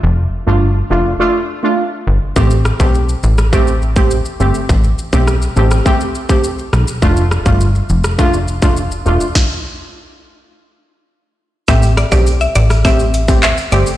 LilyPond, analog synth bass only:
\new Staff \with { instrumentName = "Analog synth bass" } { \clef bass \time 4/4 \key a \minor \tempo 4 = 103 f,,8 r16 g,,8. f,,8 r4. g,,16 r16 | a,,8. b,,8. a,,4.~ a,,16 r16 g,,16 r16 | a,,8 r16 b,,8. a,,8 r4. b,,16 r16 | f,,8. g,,8. f,,4.~ f,,16 r16 e,,16 r16 |
r1 | a,,8. b,,8. a,,4.~ a,,16 r16 g,,16 r16 | }